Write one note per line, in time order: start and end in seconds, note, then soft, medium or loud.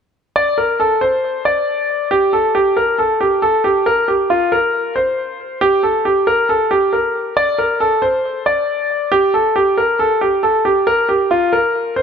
0.36 0.56 D5 loud
0.58 0.78 A#4 medium
0.80 1.00 A4 medium
1.01 1.43 C5 medium
1.45 2.07 D5 medium
2.11 2.31 G4 medium
2.33 2.53 A4 medium
2.55 2.75 G4 medium
2.77 2.97 A#4 medium
2.99 3.19 A4 medium
3.21 3.41 G4 medium
3.42 3.62 A4 medium
3.64 3.84 G4 medium
3.86 4.06 A#4 medium
4.08 4.28 G4 medium
4.30 4.50 F4 medium
4.52 4.93 A#4 medium
4.96 5.57 C5 medium
5.61 5.81 G4 loud
5.83 6.03 A4 medium
6.05 6.25 G4 medium
6.27 6.47 A#4 medium
6.49 6.69 A4 medium
6.71 6.91 G4 medium
6.93 7.34 A#4 medium
7.37 7.57 D5 loud
7.58 7.79 A#4 medium
7.80 8.01 A4 medium
8.02 8.43 C5 medium
8.46 9.08 D5 medium
9.12 9.32 G4 loud
9.34 9.54 A4 medium
9.56 9.76 G4 medium
9.78 9.98 A#4 medium
9.99 10.20 A4 medium
10.21 10.41 G4 medium
10.43 10.63 A4 medium
10.65 10.85 G4 medium
10.87 11.07 A#4 medium
11.09 11.29 G4 medium
11.31 11.51 F4 medium
11.53 11.94 A#4 medium
11.96 12.03 C5 medium